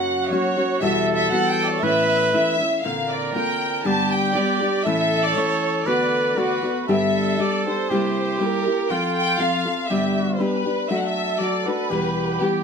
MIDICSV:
0, 0, Header, 1, 4, 480
1, 0, Start_track
1, 0, Key_signature, 2, "major"
1, 0, Tempo, 505051
1, 784, Time_signature, 2, 2, 24, 8
1, 6545, Key_signature, 1, "major"
1, 7994, Tempo, 498339
1, 12062, End_track
2, 0, Start_track
2, 0, Title_t, "Violin section"
2, 0, Program_c, 0, 48
2, 0, Note_on_c, 0, 78, 82
2, 287, Note_on_c, 0, 73, 90
2, 304, Note_off_c, 0, 78, 0
2, 770, Note_on_c, 0, 76, 92
2, 773, Note_off_c, 0, 73, 0
2, 1008, Note_off_c, 0, 76, 0
2, 1094, Note_on_c, 0, 76, 96
2, 1244, Note_off_c, 0, 76, 0
2, 1249, Note_on_c, 0, 78, 92
2, 1401, Note_off_c, 0, 78, 0
2, 1407, Note_on_c, 0, 79, 92
2, 1572, Note_off_c, 0, 79, 0
2, 1578, Note_on_c, 0, 74, 85
2, 1623, Note_off_c, 0, 74, 0
2, 1628, Note_on_c, 0, 73, 65
2, 1651, Note_on_c, 0, 74, 80
2, 1664, Note_off_c, 0, 73, 0
2, 1718, Note_on_c, 0, 76, 84
2, 1732, Note_off_c, 0, 74, 0
2, 2177, Note_off_c, 0, 76, 0
2, 2204, Note_on_c, 0, 76, 98
2, 2663, Note_off_c, 0, 76, 0
2, 2698, Note_on_c, 0, 77, 78
2, 2943, Note_on_c, 0, 74, 73
2, 2955, Note_off_c, 0, 77, 0
2, 3169, Note_on_c, 0, 79, 84
2, 3179, Note_off_c, 0, 74, 0
2, 3620, Note_off_c, 0, 79, 0
2, 3661, Note_on_c, 0, 81, 97
2, 3905, Note_on_c, 0, 79, 93
2, 3911, Note_off_c, 0, 81, 0
2, 4134, Note_off_c, 0, 79, 0
2, 4134, Note_on_c, 0, 74, 83
2, 4608, Note_on_c, 0, 76, 97
2, 4612, Note_off_c, 0, 74, 0
2, 4972, Note_on_c, 0, 74, 101
2, 4977, Note_off_c, 0, 76, 0
2, 5089, Note_on_c, 0, 73, 89
2, 5090, Note_off_c, 0, 74, 0
2, 5569, Note_on_c, 0, 74, 74
2, 5571, Note_off_c, 0, 73, 0
2, 6060, Note_on_c, 0, 71, 81
2, 6311, Note_off_c, 0, 74, 0
2, 6513, Note_off_c, 0, 71, 0
2, 6555, Note_on_c, 0, 76, 84
2, 7030, Note_on_c, 0, 74, 87
2, 7036, Note_off_c, 0, 76, 0
2, 7282, Note_on_c, 0, 72, 83
2, 7285, Note_off_c, 0, 74, 0
2, 7955, Note_off_c, 0, 72, 0
2, 7982, Note_on_c, 0, 70, 94
2, 8455, Note_on_c, 0, 79, 83
2, 8468, Note_off_c, 0, 70, 0
2, 8692, Note_off_c, 0, 79, 0
2, 8703, Note_on_c, 0, 79, 106
2, 8922, Note_off_c, 0, 79, 0
2, 8933, Note_on_c, 0, 77, 93
2, 9407, Note_on_c, 0, 76, 78
2, 9417, Note_off_c, 0, 77, 0
2, 9835, Note_off_c, 0, 76, 0
2, 9855, Note_on_c, 0, 72, 67
2, 9895, Note_on_c, 0, 71, 89
2, 9914, Note_off_c, 0, 72, 0
2, 10377, Note_on_c, 0, 76, 80
2, 10387, Note_off_c, 0, 71, 0
2, 10456, Note_off_c, 0, 76, 0
2, 10469, Note_on_c, 0, 78, 75
2, 10528, Note_on_c, 0, 76, 88
2, 10537, Note_off_c, 0, 78, 0
2, 10866, Note_on_c, 0, 74, 82
2, 10875, Note_off_c, 0, 76, 0
2, 11120, Note_on_c, 0, 71, 87
2, 11125, Note_off_c, 0, 74, 0
2, 11831, Note_off_c, 0, 71, 0
2, 11831, Note_on_c, 0, 67, 74
2, 12062, Note_off_c, 0, 67, 0
2, 12062, End_track
3, 0, Start_track
3, 0, Title_t, "Trumpet"
3, 0, Program_c, 1, 56
3, 0, Note_on_c, 1, 66, 85
3, 777, Note_on_c, 1, 69, 113
3, 791, Note_off_c, 1, 66, 0
3, 1739, Note_on_c, 1, 71, 121
3, 1753, Note_off_c, 1, 69, 0
3, 2476, Note_off_c, 1, 71, 0
3, 2711, Note_on_c, 1, 70, 89
3, 3671, Note_on_c, 1, 67, 91
3, 3685, Note_off_c, 1, 70, 0
3, 4607, Note_off_c, 1, 67, 0
3, 4613, Note_on_c, 1, 69, 106
3, 5572, Note_on_c, 1, 71, 106
3, 5586, Note_off_c, 1, 69, 0
3, 6064, Note_on_c, 1, 66, 86
3, 6078, Note_off_c, 1, 71, 0
3, 6530, Note_off_c, 1, 66, 0
3, 6536, Note_on_c, 1, 69, 93
3, 7506, Note_on_c, 1, 67, 94
3, 7521, Note_off_c, 1, 69, 0
3, 8472, Note_on_c, 1, 65, 97
3, 8487, Note_off_c, 1, 67, 0
3, 9415, Note_off_c, 1, 65, 0
3, 9421, Note_on_c, 1, 67, 70
3, 10121, Note_off_c, 1, 67, 0
3, 10386, Note_on_c, 1, 69, 75
3, 11355, Note_on_c, 1, 67, 87
3, 11369, Note_off_c, 1, 69, 0
3, 12062, Note_off_c, 1, 67, 0
3, 12062, End_track
4, 0, Start_track
4, 0, Title_t, "Nylon-string guitar"
4, 0, Program_c, 2, 24
4, 0, Note_on_c, 2, 42, 76
4, 0, Note_on_c, 2, 49, 81
4, 0, Note_on_c, 2, 54, 60
4, 0, Note_on_c, 2, 58, 79
4, 0, Note_on_c, 2, 61, 69
4, 0, Note_on_c, 2, 66, 64
4, 288, Note_off_c, 2, 54, 0
4, 293, Note_off_c, 2, 58, 0
4, 297, Note_off_c, 2, 61, 0
4, 298, Note_off_c, 2, 66, 0
4, 299, Note_on_c, 2, 54, 72
4, 301, Note_off_c, 2, 42, 0
4, 303, Note_off_c, 2, 49, 0
4, 304, Note_on_c, 2, 58, 65
4, 309, Note_on_c, 2, 61, 70
4, 310, Note_on_c, 2, 66, 82
4, 534, Note_off_c, 2, 66, 0
4, 539, Note_off_c, 2, 61, 0
4, 545, Note_off_c, 2, 58, 0
4, 545, Note_on_c, 2, 66, 44
4, 547, Note_off_c, 2, 54, 0
4, 550, Note_on_c, 2, 61, 45
4, 556, Note_on_c, 2, 58, 42
4, 558, Note_on_c, 2, 54, 39
4, 766, Note_on_c, 2, 40, 73
4, 770, Note_off_c, 2, 54, 0
4, 770, Note_off_c, 2, 58, 0
4, 773, Note_off_c, 2, 66, 0
4, 774, Note_on_c, 2, 52, 79
4, 774, Note_on_c, 2, 55, 96
4, 775, Note_on_c, 2, 47, 84
4, 776, Note_off_c, 2, 61, 0
4, 780, Note_on_c, 2, 59, 77
4, 784, Note_on_c, 2, 66, 83
4, 1236, Note_off_c, 2, 52, 0
4, 1237, Note_off_c, 2, 55, 0
4, 1243, Note_off_c, 2, 59, 0
4, 1247, Note_on_c, 2, 52, 72
4, 1249, Note_on_c, 2, 55, 72
4, 1250, Note_off_c, 2, 40, 0
4, 1252, Note_off_c, 2, 66, 0
4, 1254, Note_off_c, 2, 47, 0
4, 1254, Note_on_c, 2, 59, 81
4, 1263, Note_on_c, 2, 66, 84
4, 1721, Note_off_c, 2, 52, 0
4, 1730, Note_off_c, 2, 55, 0
4, 1730, Note_on_c, 2, 45, 82
4, 1732, Note_off_c, 2, 59, 0
4, 1732, Note_on_c, 2, 52, 76
4, 1734, Note_off_c, 2, 66, 0
4, 1734, Note_on_c, 2, 57, 75
4, 1736, Note_on_c, 2, 61, 79
4, 1738, Note_on_c, 2, 64, 70
4, 2202, Note_off_c, 2, 52, 0
4, 2205, Note_off_c, 2, 57, 0
4, 2212, Note_off_c, 2, 61, 0
4, 2213, Note_on_c, 2, 52, 63
4, 2214, Note_off_c, 2, 64, 0
4, 2217, Note_on_c, 2, 57, 72
4, 2218, Note_off_c, 2, 45, 0
4, 2223, Note_on_c, 2, 61, 67
4, 2226, Note_on_c, 2, 64, 72
4, 2450, Note_off_c, 2, 64, 0
4, 2459, Note_off_c, 2, 61, 0
4, 2461, Note_on_c, 2, 64, 43
4, 2468, Note_off_c, 2, 57, 0
4, 2470, Note_on_c, 2, 61, 44
4, 2471, Note_off_c, 2, 52, 0
4, 2479, Note_on_c, 2, 57, 39
4, 2696, Note_on_c, 2, 46, 68
4, 2699, Note_off_c, 2, 61, 0
4, 2699, Note_off_c, 2, 64, 0
4, 2702, Note_off_c, 2, 57, 0
4, 2702, Note_on_c, 2, 50, 77
4, 2703, Note_on_c, 2, 60, 75
4, 2706, Note_on_c, 2, 58, 87
4, 2709, Note_on_c, 2, 65, 62
4, 3162, Note_off_c, 2, 50, 0
4, 3168, Note_off_c, 2, 58, 0
4, 3174, Note_off_c, 2, 60, 0
4, 3174, Note_on_c, 2, 50, 59
4, 3180, Note_on_c, 2, 58, 71
4, 3181, Note_off_c, 2, 46, 0
4, 3183, Note_off_c, 2, 65, 0
4, 3185, Note_on_c, 2, 60, 72
4, 3194, Note_on_c, 2, 65, 76
4, 3647, Note_off_c, 2, 50, 0
4, 3652, Note_on_c, 2, 43, 77
4, 3655, Note_on_c, 2, 55, 74
4, 3656, Note_off_c, 2, 58, 0
4, 3658, Note_on_c, 2, 50, 75
4, 3660, Note_off_c, 2, 60, 0
4, 3660, Note_off_c, 2, 65, 0
4, 3660, Note_on_c, 2, 59, 79
4, 3664, Note_on_c, 2, 62, 81
4, 3664, Note_on_c, 2, 67, 74
4, 4118, Note_off_c, 2, 55, 0
4, 4118, Note_off_c, 2, 59, 0
4, 4126, Note_off_c, 2, 67, 0
4, 4128, Note_off_c, 2, 62, 0
4, 4129, Note_on_c, 2, 55, 67
4, 4129, Note_on_c, 2, 59, 76
4, 4131, Note_off_c, 2, 43, 0
4, 4135, Note_off_c, 2, 50, 0
4, 4138, Note_on_c, 2, 67, 76
4, 4140, Note_on_c, 2, 62, 78
4, 4368, Note_off_c, 2, 67, 0
4, 4377, Note_off_c, 2, 62, 0
4, 4379, Note_on_c, 2, 67, 49
4, 4382, Note_off_c, 2, 55, 0
4, 4382, Note_off_c, 2, 59, 0
4, 4388, Note_on_c, 2, 62, 46
4, 4398, Note_on_c, 2, 55, 37
4, 4398, Note_on_c, 2, 59, 39
4, 4610, Note_off_c, 2, 67, 0
4, 4615, Note_off_c, 2, 62, 0
4, 4616, Note_off_c, 2, 55, 0
4, 4618, Note_off_c, 2, 59, 0
4, 4618, Note_on_c, 2, 45, 72
4, 4620, Note_on_c, 2, 52, 85
4, 4621, Note_on_c, 2, 57, 85
4, 4622, Note_on_c, 2, 61, 68
4, 4625, Note_on_c, 2, 64, 75
4, 5085, Note_off_c, 2, 52, 0
4, 5091, Note_off_c, 2, 57, 0
4, 5092, Note_off_c, 2, 61, 0
4, 5096, Note_off_c, 2, 45, 0
4, 5097, Note_off_c, 2, 64, 0
4, 5097, Note_on_c, 2, 52, 57
4, 5102, Note_on_c, 2, 57, 62
4, 5104, Note_on_c, 2, 61, 67
4, 5109, Note_on_c, 2, 64, 86
4, 5562, Note_off_c, 2, 57, 0
4, 5565, Note_off_c, 2, 52, 0
4, 5569, Note_on_c, 2, 50, 85
4, 5574, Note_on_c, 2, 57, 77
4, 5576, Note_off_c, 2, 61, 0
4, 5578, Note_off_c, 2, 64, 0
4, 5580, Note_on_c, 2, 59, 79
4, 5582, Note_on_c, 2, 66, 80
4, 6032, Note_off_c, 2, 50, 0
4, 6043, Note_off_c, 2, 57, 0
4, 6043, Note_on_c, 2, 50, 59
4, 6044, Note_off_c, 2, 59, 0
4, 6049, Note_off_c, 2, 66, 0
4, 6055, Note_on_c, 2, 57, 70
4, 6055, Note_on_c, 2, 59, 64
4, 6060, Note_on_c, 2, 66, 67
4, 6290, Note_off_c, 2, 66, 0
4, 6298, Note_off_c, 2, 59, 0
4, 6302, Note_on_c, 2, 66, 44
4, 6306, Note_off_c, 2, 50, 0
4, 6306, Note_off_c, 2, 57, 0
4, 6310, Note_on_c, 2, 59, 41
4, 6318, Note_on_c, 2, 57, 42
4, 6535, Note_off_c, 2, 59, 0
4, 6539, Note_off_c, 2, 66, 0
4, 6539, Note_on_c, 2, 43, 66
4, 6542, Note_on_c, 2, 50, 69
4, 6543, Note_off_c, 2, 57, 0
4, 6544, Note_on_c, 2, 55, 72
4, 6546, Note_on_c, 2, 59, 72
4, 6548, Note_on_c, 2, 62, 82
4, 6549, Note_on_c, 2, 67, 85
4, 7012, Note_off_c, 2, 55, 0
4, 7016, Note_off_c, 2, 59, 0
4, 7022, Note_off_c, 2, 62, 0
4, 7023, Note_on_c, 2, 55, 55
4, 7026, Note_off_c, 2, 67, 0
4, 7027, Note_on_c, 2, 59, 55
4, 7028, Note_off_c, 2, 43, 0
4, 7030, Note_off_c, 2, 50, 0
4, 7034, Note_on_c, 2, 62, 62
4, 7037, Note_on_c, 2, 67, 62
4, 7275, Note_off_c, 2, 67, 0
4, 7279, Note_off_c, 2, 62, 0
4, 7281, Note_off_c, 2, 55, 0
4, 7284, Note_off_c, 2, 59, 0
4, 7286, Note_on_c, 2, 67, 39
4, 7290, Note_on_c, 2, 62, 34
4, 7297, Note_on_c, 2, 59, 30
4, 7300, Note_on_c, 2, 55, 30
4, 7509, Note_off_c, 2, 55, 0
4, 7511, Note_on_c, 2, 48, 67
4, 7512, Note_off_c, 2, 67, 0
4, 7516, Note_off_c, 2, 62, 0
4, 7519, Note_off_c, 2, 59, 0
4, 7520, Note_on_c, 2, 55, 74
4, 7520, Note_on_c, 2, 64, 85
4, 7523, Note_on_c, 2, 58, 85
4, 7524, Note_on_c, 2, 67, 78
4, 7970, Note_off_c, 2, 55, 0
4, 7975, Note_off_c, 2, 58, 0
4, 7981, Note_on_c, 2, 55, 55
4, 7985, Note_off_c, 2, 64, 0
4, 7985, Note_off_c, 2, 67, 0
4, 7987, Note_on_c, 2, 58, 72
4, 7992, Note_off_c, 2, 48, 0
4, 7996, Note_on_c, 2, 64, 60
4, 7996, Note_on_c, 2, 67, 70
4, 8227, Note_off_c, 2, 67, 0
4, 8237, Note_off_c, 2, 64, 0
4, 8238, Note_on_c, 2, 67, 47
4, 8239, Note_off_c, 2, 55, 0
4, 8242, Note_off_c, 2, 58, 0
4, 8249, Note_on_c, 2, 64, 40
4, 8254, Note_on_c, 2, 58, 32
4, 8466, Note_on_c, 2, 53, 80
4, 8470, Note_off_c, 2, 58, 0
4, 8470, Note_off_c, 2, 67, 0
4, 8471, Note_off_c, 2, 64, 0
4, 8474, Note_on_c, 2, 60, 70
4, 8475, Note_on_c, 2, 65, 80
4, 8479, Note_on_c, 2, 69, 74
4, 8924, Note_off_c, 2, 53, 0
4, 8932, Note_off_c, 2, 60, 0
4, 8933, Note_off_c, 2, 65, 0
4, 8935, Note_on_c, 2, 53, 69
4, 8939, Note_off_c, 2, 69, 0
4, 8943, Note_on_c, 2, 60, 80
4, 8944, Note_on_c, 2, 65, 72
4, 8950, Note_on_c, 2, 69, 77
4, 9184, Note_off_c, 2, 69, 0
4, 9191, Note_off_c, 2, 53, 0
4, 9192, Note_off_c, 2, 65, 0
4, 9195, Note_off_c, 2, 60, 0
4, 9196, Note_on_c, 2, 69, 51
4, 9204, Note_on_c, 2, 65, 40
4, 9211, Note_on_c, 2, 60, 42
4, 9424, Note_off_c, 2, 69, 0
4, 9425, Note_on_c, 2, 43, 67
4, 9428, Note_off_c, 2, 65, 0
4, 9431, Note_off_c, 2, 60, 0
4, 9431, Note_on_c, 2, 55, 86
4, 9433, Note_on_c, 2, 50, 70
4, 9435, Note_on_c, 2, 59, 85
4, 9436, Note_on_c, 2, 62, 84
4, 9440, Note_on_c, 2, 67, 75
4, 9892, Note_off_c, 2, 55, 0
4, 9894, Note_off_c, 2, 59, 0
4, 9902, Note_off_c, 2, 62, 0
4, 9904, Note_on_c, 2, 55, 60
4, 9906, Note_off_c, 2, 67, 0
4, 9906, Note_on_c, 2, 59, 64
4, 9908, Note_off_c, 2, 43, 0
4, 9912, Note_off_c, 2, 50, 0
4, 9914, Note_on_c, 2, 62, 69
4, 9918, Note_on_c, 2, 67, 63
4, 10142, Note_off_c, 2, 67, 0
4, 10152, Note_off_c, 2, 62, 0
4, 10153, Note_on_c, 2, 67, 34
4, 10158, Note_off_c, 2, 59, 0
4, 10160, Note_off_c, 2, 55, 0
4, 10163, Note_on_c, 2, 62, 36
4, 10170, Note_on_c, 2, 59, 34
4, 10174, Note_on_c, 2, 55, 34
4, 10387, Note_off_c, 2, 62, 0
4, 10389, Note_off_c, 2, 55, 0
4, 10389, Note_off_c, 2, 67, 0
4, 10390, Note_off_c, 2, 59, 0
4, 10392, Note_on_c, 2, 54, 55
4, 10394, Note_on_c, 2, 57, 71
4, 10398, Note_on_c, 2, 62, 66
4, 10398, Note_on_c, 2, 66, 78
4, 10862, Note_off_c, 2, 54, 0
4, 10868, Note_off_c, 2, 57, 0
4, 10873, Note_on_c, 2, 54, 57
4, 10875, Note_off_c, 2, 62, 0
4, 10875, Note_off_c, 2, 66, 0
4, 10879, Note_on_c, 2, 57, 64
4, 10886, Note_on_c, 2, 62, 65
4, 10886, Note_on_c, 2, 66, 73
4, 11114, Note_off_c, 2, 66, 0
4, 11125, Note_off_c, 2, 62, 0
4, 11126, Note_on_c, 2, 66, 45
4, 11128, Note_off_c, 2, 54, 0
4, 11131, Note_off_c, 2, 57, 0
4, 11136, Note_on_c, 2, 62, 38
4, 11143, Note_on_c, 2, 57, 35
4, 11354, Note_on_c, 2, 40, 72
4, 11357, Note_off_c, 2, 66, 0
4, 11360, Note_off_c, 2, 57, 0
4, 11362, Note_off_c, 2, 62, 0
4, 11362, Note_on_c, 2, 47, 83
4, 11362, Note_on_c, 2, 52, 75
4, 11364, Note_on_c, 2, 55, 71
4, 11368, Note_on_c, 2, 59, 69
4, 11369, Note_on_c, 2, 67, 69
4, 11828, Note_off_c, 2, 52, 0
4, 11831, Note_off_c, 2, 55, 0
4, 11834, Note_off_c, 2, 40, 0
4, 11836, Note_off_c, 2, 59, 0
4, 11838, Note_off_c, 2, 47, 0
4, 11839, Note_on_c, 2, 52, 63
4, 11841, Note_off_c, 2, 67, 0
4, 11843, Note_on_c, 2, 55, 71
4, 11848, Note_on_c, 2, 59, 69
4, 11853, Note_on_c, 2, 67, 60
4, 12062, Note_off_c, 2, 52, 0
4, 12062, Note_off_c, 2, 55, 0
4, 12062, Note_off_c, 2, 59, 0
4, 12062, Note_off_c, 2, 67, 0
4, 12062, End_track
0, 0, End_of_file